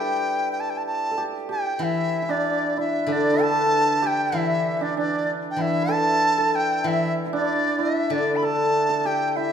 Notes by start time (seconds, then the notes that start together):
Already playing: G3 D4 E4 G4 A4 B4 G5
0.52 G5
0.60 A5
0.70 G5
0.77 A5
0.86 A5
1.11 A4
1.18 G4
1.49 G4 G5
1.79 E3 E4
1.83 E5
2.22 E4
2.29 D4 D5
2.78 E4 E5
3.07 D3 D4
3.12 D5
3.34 B4
3.39 A4 A5
4.02 G4
4.07 G5
4.32 E3 E4
4.37 E5
4.77 E5
4.81 D4 D5
4.97 D4 D5
5.51 G5
5.56 E3 E4
5.61 E5
5.82 B4
5.88 A4
5.92 A5
6.38 A4
6.55 G5
6.84 E3 E4 E5
7.26 E4
7.33 D4 D5
7.79 E4
7.83 E5
8.10 D3 D4 D5
8.36 B5
8.42 A4 A5
8.89 A4
9.05 G4 G5
9.28 G5
9.36 E4 E5